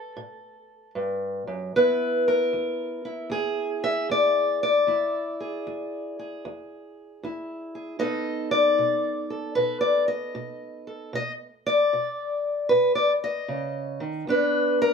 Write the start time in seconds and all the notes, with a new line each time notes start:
Already playing: A2 A4
0.17 A2
0.95 G2
1.47 F#2
1.76 E2 B3 E4 B4
2.28 A#4
2.53 E2
3.05 E4
3.30 E2 G#4
3.84 E5
4.10 E2 D5
4.63 D5
4.87 E2 E4
5.40 G#4
5.67 E2
6.19 G#4
6.45 E2
7.23 E2 E4
7.75 G#4
7.99 B2 B3 D#4 A4 D#5
8.51 D5
8.78 B2
9.30 A4
9.55 B2 B4
9.81 D5
10.08 D#5
10.35 B2
10.87 A4
11.13 B2 D#5
11.66 D5
11.93 B2
12.69 B2 B4
12.95 D5
13.24 D#5
13.48 C#3
14.00 D#3
14.27 E2 B3 D4 B4
14.82 A#4